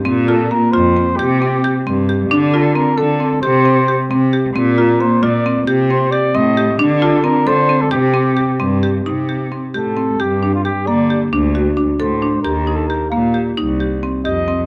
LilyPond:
<<
  \new Staff \with { instrumentName = "Flugelhorn" } { \time 5/8 \key c \dorian \tempo 4 = 133 r8 a'8 bes'8 c''4 | g'4. r4 | r8 a'8 bes'8 a'4 | c''4. r4 |
r8 bes'8 c''8 d''4 | r8 c''8 d''8 ees''4 | r8 a'8 bes'8 c''8. a'16 | g'2 r8 |
r4. a'4 | g'8. f'16 g'8 d''8. r16 | r4. c''4 | bes'8. a'16 bes'8 f''8. r16 |
r4. ees''4 | }
  \new Staff \with { instrumentName = "Marimba" } { \time 5/8 \key c \dorian c'8 f'8 bes8 f'8 c'8 | g'8 c'8 g'8 c'8 g'8 | d'8 f'8 c'8 a'8 c'8 | g'8 c'8 g'8 c'8 g'8 |
c'8 f'8 bes8 f'8 c'8 | g'8 c'8 g'8 c'8 g'8 | d'8 f'8 c'8 a'8 c'8 | g'8 c'8 g'8 c'8 g'8 |
ees'8 g'8 c'8 g'8 c'8 | g'8 d'8 g'8 bes8 g'8 | d'8 fis'8 d'8 a'8 d'8 | g'8 ees'8 g'8 bes8 g'8 |
ees'8 g'8 c'8 g'8 c'8 | }
  \new Staff \with { instrumentName = "Cello" } { \clef bass \time 5/8 \key c \dorian bes,4. f,4 | c4. g,4 | d4. d4 | c4. c4 |
bes,4. bes,4 | c4. a,4 | d4. d4 | c4. g,4 |
c4. a,4 | g,4. d4 | d,4. a,4 | ees,4. bes,4 |
c,4. f,4 | }
>>